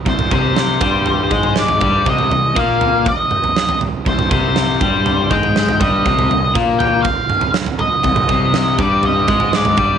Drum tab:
SD |----o-------o---|------------o---|----o-------o---|------------o---|
T2 |-oo-------o--o--|----------o-----|-oo-------o--o--|----------o-----|
FT |ooo---o-o-oo-oo-|ooo---o-o--o-oo-|ooo---o-o-oo-oo-|ooo---o-o--o-oo-|
BD |o-o---o---o---o-|o---o---o-------|o-o---o---o---o-|o---o---o-------|

SD |----o-------o---|
T2 |-oo-------o--o--|
FT |ooo---o-o-oo-oo-|
BD |o-o---o---o---o-|